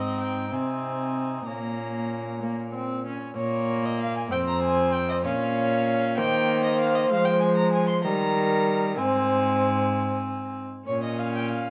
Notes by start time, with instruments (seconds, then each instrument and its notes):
Already playing: cello G#2, viola C4, cor anglais D#4, violin D#5
0.20 violin G5
0.52 cello C3, viola C4, cor anglais D#4, violin G#5
1.46 cello A#2, viola A#3, cor anglais C#4, violin A#5
2.42 viola A#3
2.74 viola C4
3.06 viola C#4
3.36 cello A#2, viola A#3, violin C#5
3.85 violin D#5
4.01 violin F5
4.16 violin G#5
4.30 cello F2, viola C4, cor anglais C5, violin G5
4.48 violin A#5
4.62 violin G#5
4.93 violin G5
5.10 violin D#5
5.24 cello A#2, viola C#4, cor anglais C#5, violin F5
6.17 cello D#3, viola A#3, cor anglais C5, violin G5
6.64 violin D#5
6.79 violin F5
6.95 violin D#5
7.10 cello F3, viola G#3, violin F5
7.25 violin G5
7.40 violin G#5
7.56 violin A#5
7.72 violin G#5
7.87 violin C6
8.03 cello D#3, viola G3, cor anglais A#4, violin A#5
8.97 cello G#2, viola C4, cor anglais C5, violin G#5
10.87 cello A#2, viola C#4, violin C#5
11.03 violin D#5
11.19 violin F5
11.35 violin G5
11.50 violin F5